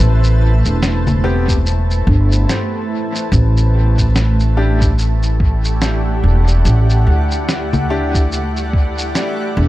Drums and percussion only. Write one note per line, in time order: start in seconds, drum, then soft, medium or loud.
0.24 shaker soft
0.65 shaker soft
0.83 snare medium
0.83 shaker soft
1.07 low conga medium
1.07 shaker soft
1.48 kick loud
1.48 shaker soft
1.66 shaker soft
1.91 shaker soft
2.07 kick loud
2.32 shaker soft
2.49 snare medium
2.49 shaker soft
3.16 shaker soft
3.32 kick loud
3.32 shaker soft
3.57 shaker soft
3.98 kick medium
3.98 shaker soft
4.16 snare medium
4.16 shaker soft
4.40 shaker soft
4.81 kick loud
4.81 shaker soft
4.99 shaker soft
5.23 shaker soft
5.40 kick loud
5.65 shaker soft
5.82 snare medium
5.82 shaker soft
6.48 shaker soft
6.65 shaker soft
6.90 shaker soft
7.31 shaker soft
7.49 snare medium
7.49 shaker soft
7.73 low conga medium
7.73 shaker soft
8.15 kick loud
8.15 shaker soft
8.32 shaker soft
8.57 shaker soft
8.73 kick loud
8.98 shaker soft
9.15 snare medium
9.15 shaker soft